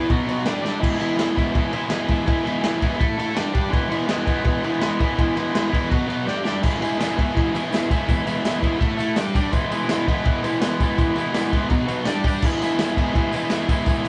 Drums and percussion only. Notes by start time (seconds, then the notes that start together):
0.10 kick, ride
0.28 ride
0.46 snare, ride
0.65 snare
0.83 kick, crash
1.01 ride
1.19 snare, ride
1.37 kick, ride
1.55 kick, ride
1.73 ride
1.90 snare, ride
2.08 kick, ride
2.27 kick, ride
2.47 ride
2.64 snare, ride
2.82 kick, ride
3.01 kick, ride
3.19 ride
3.37 snare, ride
3.55 kick, ride
3.73 kick, ride
3.92 ride
4.09 snare, ride
4.27 kick, ride
4.44 kick, ride
4.64 ride
4.82 snare, ride
5.00 kick, ride
5.18 kick, ride
5.37 ride
5.55 snare, ride
5.73 kick, ride
5.91 kick, ride
6.10 ride
6.27 snare
6.45 snare
6.63 kick, ride, tambourine, crash
6.82 ride, tambourine
7.01 snare, ride, tambourine
7.19 kick, ride
7.37 kick, ride
7.55 ride, tambourine
7.73 snare, ride, tambourine
7.91 kick, ride, tambourine
8.08 kick, ride, tambourine
8.27 ride, tambourine
8.45 snare, ride, tambourine
8.63 kick, ride
8.81 kick, ride
8.99 ride, tambourine
9.16 snare, ride, tambourine
9.35 kick, ride, tambourine
9.52 kick, ride, tambourine
9.72 ride, tambourine
9.89 snare, ride, tambourine
10.08 kick, ride
10.25 kick, ride
10.44 ride, tambourine
10.62 snare, ride, tambourine
10.80 kick, ride, tambourine
10.98 kick, ride, tambourine
11.16 ride, tambourine
11.34 snare, ride, tambourine
11.53 kick, ride
11.70 kick, ride, tambourine
11.88 ride, tambourine
12.05 snare, ride, tambourine
12.24 kick, ride, tambourine
12.42 kick, tambourine, crash
12.62 ride, tambourine
12.79 snare, ride, tambourine
12.97 kick, ride
13.15 kick, ride
13.32 ride, tambourine
13.50 snare, ride, tambourine
13.69 kick, ride, tambourine
13.86 kick, ride, tambourine
14.05 ride